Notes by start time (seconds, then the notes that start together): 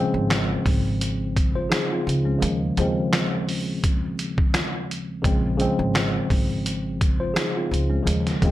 Already playing: C#3 F3 G#3 C4
0.14 G#1
0.30 snare, closed hi-hat
0.66 G#1, kick, open hi-hat
1.01 closed hi-hat
1.37 kick, closed hi-hat
1.55 F4 C5
1.69 D#4 G#4, snare, closed hi-hat
1.92 C4 F4
2.07 C#2, closed hi-hat
2.25 G#3 C#4
2.38 D#2 C#3 F3 G#3 A#3
2.42 D#2, closed hi-hat
2.77 D#2 C#3 F3 G#3 C4, closed hi-hat
3.13 snare, closed hi-hat
3.49 open hi-hat
3.84 kick, closed hi-hat
4.19 closed hi-hat
4.38 kick
4.54 snare, closed hi-hat
4.91 closed hi-hat
5.22 A#1 C#3 F3 G#3 C4, kick, closed hi-hat
5.57 C#3 F3 G#3 C4, closed hi-hat
5.79 G#1
5.95 snare, closed hi-hat
6.30 G#1, kick, open hi-hat
6.66 closed hi-hat
7.01 kick, closed hi-hat
7.20 F4 C5
7.34 D#4 G#4, snare, closed hi-hat
7.57 C4 F4
7.71 C#2, closed hi-hat
7.90 G#3 C#4
8.02 D#2 C#3 F3 G#3 A#3
8.07 D#2, closed hi-hat
8.27 snare, closed hi-hat
8.42 D#2 C#3 F3 G#3 C4, kick, closed hi-hat